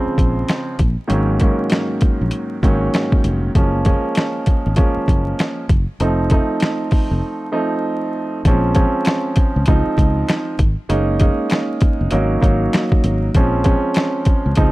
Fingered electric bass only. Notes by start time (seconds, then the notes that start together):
0.07 muted fingered electric bass stroke
0.18 A#1
0.79 A#1
1.10 G#1
2.21 A#1
2.63 G#1
3.25 F1
3.55 F#1
4.66 G#1
4.97 muted fingered electric bass stroke
5.08 F#1
5.70 F#1
6.00 F1
7.11 F1
8.45 A#1
9.56 C#2
9.68 C#2
9.87 muted fingered electric bass stroke
9.98 C#2
10.59 G#1
10.90 F#1
12.01 F1
12.12 G#1
12.43 G#1
13.04 G#1
13.35 A#1
14.46 C#2
14.58 C#2